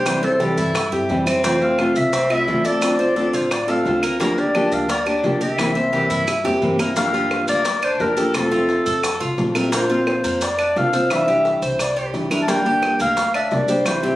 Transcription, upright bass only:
Already playing: C2
0.58 G2
0.92 G2
1.10 F2
1.96 C2
2.48 D2
3.34 A1
3.86 D2
4.72 D2
5.24 C2
6.10 G2
6.45 F2
6.62 G2
7.48 D2
8.00 F2
8.86 F2
9.21 C2
9.38 A#1
10.24 F2
10.76 C2
11.62 C2
12.14 G1
13.00 D2
13.52 C2

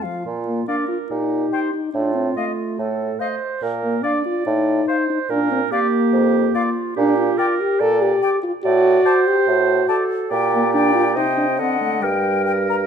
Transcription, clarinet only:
0.04 F4
0.25 F4
0.67 A#4
1.11 G4
1.95 F4
2.79 A4
3.20 C5
3.63 A#4
4.04 D5
4.88 C5
5.30 A#4
5.72 G4
6.55 F4
6.96 G4
7.38 A#4
7.80 D5
8.64 D5
9.06 C5
9.89 A4
10.31 G4
11.16 C5
11.60 A4
12.03 A#4

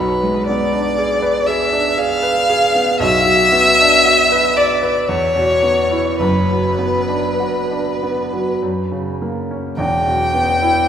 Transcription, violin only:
Already playing: B4
0.47 D5
1.47 E5
1.98 F5
3.00 E5
4.57 D5
5.08 C#5
6.19 B4
9.78 G5

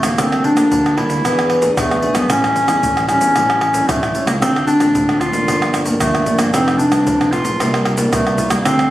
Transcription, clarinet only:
0.04 A#3
0.20 C4
0.45 D4
0.97 E4
1.78 A3
2.15 B3
2.30 C#4
3.08 C#4
3.88 A3
4.26 A#3
4.41 C4
4.67 D4
5.20 F4
6.01 A3
6.38 A#3
6.53 C4
6.78 D4
7.31 F4
8.13 A3
8.50 A#3
8.65 C4

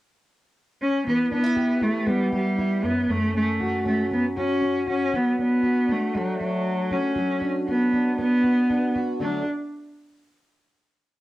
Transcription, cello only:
0.82 C#4
1.07 B3
1.32 B3
1.83 A3
2.08 G3
2.35 G3
2.84 B3
3.10 A3
3.36 A3
3.87 A3
4.13 B3
4.38 C#4
4.90 C#4
5.16 B3
5.41 B3
5.91 A3
6.17 F#3
6.41 F#3
6.93 C#4
7.68 B3
8.20 B3
9.22 D4

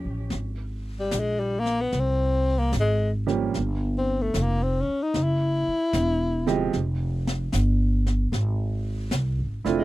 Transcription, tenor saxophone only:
1.00 G3
1.20 G#3
1.40 G3
1.60 A#3
1.81 B3
2.00 C4
2.59 A#3
2.80 G#3
3.98 C4
4.22 A3
4.42 A#3
4.63 C4
4.81 C#4
5.03 D#4
5.24 E4
9.78 G#3

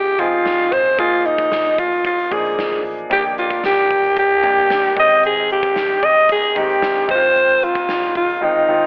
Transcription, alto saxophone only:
Already playing: G4
0.19 F4
0.72 C5
0.99 F4
1.26 D#4
1.79 F4
2.06 F4
2.33 G#4
3.12 G4
3.39 F4
3.65 G4
4.19 G4
4.99 D#5
5.26 G#4
5.52 G4
6.05 D#5
6.32 G#4
6.58 G4
7.11 C5
7.64 F4
8.17 F4
8.44 D#4

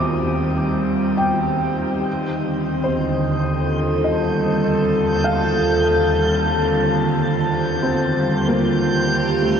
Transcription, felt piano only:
Already playing: C4 D6 D#6
1.17 G5
2.84 C5
4.04 D#5
5.24 F5
7.82 C4
8.48 A#3
9.42 A3

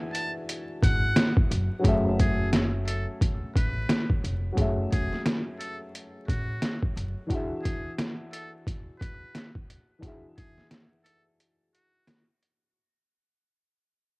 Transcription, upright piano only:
Already playing: E3 D4 F#4 G#4 E5
1.79 F#3 C#4
1.83 A3 G#4
1.88 E5
4.53 F#3 C#4
4.57 A3 G#4
4.61 E5
7.27 E3 D4
7.31 F#4 G#4
7.35 E5
9.99 E3 D4
10.03 F#4 G#4
10.07 E5

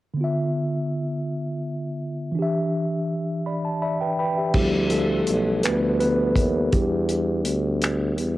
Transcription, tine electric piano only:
0.14 D3 B3
0.21 F4 E5
2.32 E3 D4
2.39 G4 E5
3.46 D5 B5
3.65 A5
3.82 D5 E5 B5
4.01 B4 G5
4.19 B4 G5 B5
4.37 G4 E5
4.54 F3 G3 B3 E4 G4
4.90 A3 A4
5.64 B3 B4
6.00 B3 B4
6.73 G3 B3 D4 G4

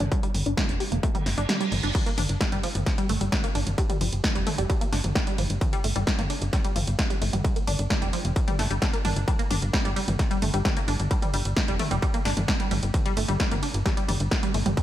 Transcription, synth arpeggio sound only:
0.00 D4
0.12 G3
0.23 G3
0.46 D4
0.57 G3
0.80 G4
0.92 A#3
1.03 A3
1.15 G3
1.38 D4
1.49 G3
1.61 G3
1.83 D4
1.95 G3
2.06 A#3
2.18 D4
2.41 G3
2.52 G3
2.64 F3
2.98 G3
3.09 A3
3.21 G3
3.32 G3
3.44 A#3
3.55 D4
3.78 G3
3.90 G3
4.01 F3
4.35 G3
4.47 A3
4.58 G3
4.70 G3
4.81 A#3
4.92 D4
5.15 G3
5.27 G3
5.38 F3
5.73 G3
5.84 A3
5.96 G3
6.07 G3
6.19 A#3
6.30 D4
6.53 G3
6.64 G3
6.76 F3
7.10 G3
7.22 A3
7.33 G3
7.44 G3
7.56 A#3
7.67 D4
7.90 G3
8.02 G3
8.13 F3
8.48 G3
8.59 A3
8.71 G3
8.82 G3
8.93 A#3
9.05 D4
9.28 G3
9.39 A#3
9.50 D4
9.73 G3
9.85 G3
9.96 G3
10.31 G3
10.42 A3
10.54 G3
10.65 G3
10.77 A#3
10.88 D4
11.11 G3
11.22 G3
11.34 G3
11.68 G3
11.79 A3
11.91 G3
12.02 G3
12.14 A#3
12.25 D4
12.48 G3
12.60 G3
12.71 G3
13.06 G3
13.17 A3
13.28 G3
13.40 G3
13.51 A#3
13.63 D4
13.85 G3
13.97 G3
14.08 G3
14.43 G3
14.54 A3
14.66 G3
14.77 G3

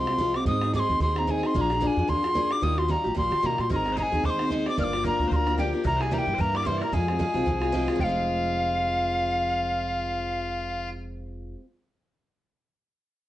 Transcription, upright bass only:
Already playing: C2
0.47 G#2
0.89 D#2
1.00 D#2
1.55 A#1
1.97 F2
2.08 F2
2.62 D#2
3.05 A#1
3.16 A#1
3.32 D3
3.44 C3
3.59 A#2
3.70 G#1
4.12 D#2
4.24 D#2
4.77 G1
5.19 D2
5.31 D2
5.85 C2
6.27 G2
6.39 G2
6.92 F2
7.35 C2
7.46 C2
7.99 F1

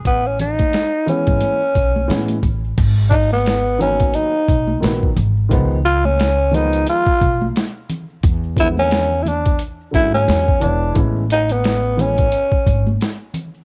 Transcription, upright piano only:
1.06 E3 G#3 B3 C#4
2.08 E3 G#3 B3 C#4
3.78 D#3 F#3 A#3 B3
4.80 D#3 F#3 A#3
4.84 B3
5.49 D#3 F3 G#3 B3
6.51 D#3 F3 G#3 B3
8.56 D3 F3 G#3 B3
9.91 D3 F#3 G#3 C#4
10.60 E3 G#3 B3 C#5
10.95 E3 G#3 B3 C#4
11.97 E3 G#3 B3 C#4

